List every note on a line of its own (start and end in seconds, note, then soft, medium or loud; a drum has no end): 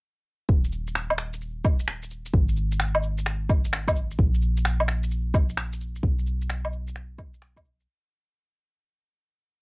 0.49 2.32 D#1 medium
0.49 kick loud
0.65 shaker soft
0.73 cabasa medium
0.88 shaker medium
0.96 finger snap loud
1.10 low woodblock medium
1.18 finger snap medium
1.18 cabasa medium
1.33 shaker medium
1.41 shaker soft
1.64 kick loud
1.64 cabasa medium
1.64 low woodblock soft
1.79 shaker medium
1.88 finger snap loud
2.02 shaker soft
2.11 cabasa medium
2.26 shaker medium
2.33 4.17 G#1 medium
2.33 kick loud
2.49 shaker soft
2.57 cabasa medium
2.72 shaker medium
2.80 finger snap loud
2.95 low woodblock medium
3.03 cabasa medium
3.18 shaker medium
3.26 finger snap medium
3.26 shaker soft
3.49 kick loud
3.49 cabasa medium
3.49 low woodblock soft
3.64 shaker medium
3.73 finger snap loud
3.87 kick medium
3.87 low woodblock medium
3.87 shaker soft
3.96 cabasa medium
4.11 shaker medium
4.18 6.02 A#1 medium
4.18 kick loud
4.34 shaker soft
4.42 cabasa medium
4.57 shaker medium
4.65 finger snap loud
4.80 low woodblock medium
4.88 finger snap medium
4.88 cabasa medium
5.03 shaker medium
5.11 shaker soft
5.34 kick loud
5.34 cabasa medium
5.34 low woodblock soft
5.49 shaker medium
5.57 finger snap loud
5.73 shaker soft
5.81 cabasa medium
5.96 shaker medium
6.03 7.86 B1 medium
6.03 kick loud
6.19 shaker soft
6.27 cabasa medium
6.42 shaker medium
6.50 finger snap loud
6.65 low woodblock medium
6.73 cabasa medium
6.88 shaker medium
6.96 finger snap medium
6.96 shaker soft
7.18 kick loud
7.18 cabasa medium
7.18 low woodblock soft
7.34 shaker medium
7.42 finger snap loud
7.56 kick medium
7.56 low woodblock medium
7.56 shaker soft
7.65 cabasa medium
7.80 shaker medium